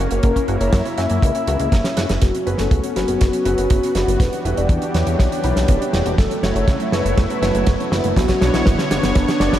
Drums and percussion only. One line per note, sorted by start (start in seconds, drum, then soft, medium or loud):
0.11 closed hi-hat medium
0.23 kick loud
0.23 closed hi-hat loud
0.36 kick medium
0.36 closed hi-hat medium
0.48 closed hi-hat medium
0.61 closed hi-hat medium
0.73 kick loud
0.73 snare loud
0.73 closed hi-hat loud
0.85 closed hi-hat medium
0.98 snare soft
0.98 closed hi-hat medium
1.10 closed hi-hat medium
1.22 kick loud
1.22 closed hi-hat loud
1.35 closed hi-hat medium
1.47 closed hi-hat medium
1.60 closed hi-hat medium
1.72 kick loud
1.72 snare medium
1.72 closed hi-hat loud
1.84 snare medium
1.84 closed hi-hat medium
1.97 snare medium
1.97 closed hi-hat medium
2.09 snare medium
2.09 closed hi-hat medium
2.22 kick loud
2.22 snare soft
2.22 closed hi-hat loud
2.35 closed hi-hat medium
2.47 closed hi-hat medium
2.58 snare soft
2.58 closed hi-hat medium
2.71 kick loud
2.71 closed hi-hat loud
2.84 closed hi-hat medium
2.96 snare soft
2.96 closed hi-hat medium
3.08 closed hi-hat medium
3.21 kick loud
3.21 snare medium
3.21 closed hi-hat loud
3.33 closed hi-hat medium
3.45 closed hi-hat medium
3.58 closed hi-hat medium
3.70 kick loud
3.70 closed hi-hat loud
3.83 closed hi-hat medium
3.95 snare medium
3.95 closed hi-hat medium
4.08 closed hi-hat medium
4.20 kick loud
4.20 snare medium
4.20 closed hi-hat loud
4.33 closed hi-hat medium
4.45 closed hi-hat medium
4.57 closed hi-hat medium
4.69 kick loud
4.69 closed hi-hat medium
4.82 closed hi-hat medium
4.94 snare medium
4.94 closed hi-hat medium
5.07 closed hi-hat medium
5.19 kick loud
5.19 snare medium
5.19 closed hi-hat loud
5.32 closed hi-hat medium
5.44 closed hi-hat medium
5.56 snare medium
5.56 closed hi-hat medium
5.68 kick loud
5.68 closed hi-hat loud
5.82 closed hi-hat medium
5.93 snare medium
5.93 closed hi-hat medium
6.06 closed hi-hat medium
6.18 kick loud
6.18 snare medium
6.18 closed hi-hat loud
6.31 closed hi-hat medium
6.43 snare medium
6.43 closed hi-hat medium
6.56 closed hi-hat medium
6.68 kick loud
6.68 snare medium
6.68 closed hi-hat medium
6.80 closed hi-hat medium
6.92 snare medium
6.92 closed hi-hat medium
7.06 closed hi-hat medium
7.17 kick loud
7.17 snare medium
7.17 closed hi-hat medium
7.30 closed hi-hat medium
7.43 snare medium
7.43 closed hi-hat medium
7.55 closed hi-hat medium
7.67 kick loud
7.67 snare medium
7.67 closed hi-hat loud
7.80 closed hi-hat medium
7.92 snare loud
7.92 closed hi-hat medium
8.04 closed hi-hat medium
8.16 kick loud
8.16 snare medium
8.16 closed hi-hat loud
8.28 kick medium
8.28 snare medium
8.28 closed hi-hat medium
8.41 snare medium
8.41 closed hi-hat soft
8.54 snare medium
8.54 closed hi-hat medium
8.66 kick loud
8.66 snare loud
8.66 closed hi-hat medium
8.79 snare medium
8.79 closed hi-hat medium
8.91 snare loud
8.91 closed hi-hat medium
9.03 snare medium
9.03 closed hi-hat medium
9.15 kick loud
9.15 snare medium
9.15 closed hi-hat loud
9.28 snare medium
9.28 closed hi-hat medium
9.40 snare medium
9.40 closed hi-hat medium
9.53 snare medium
9.53 closed hi-hat soft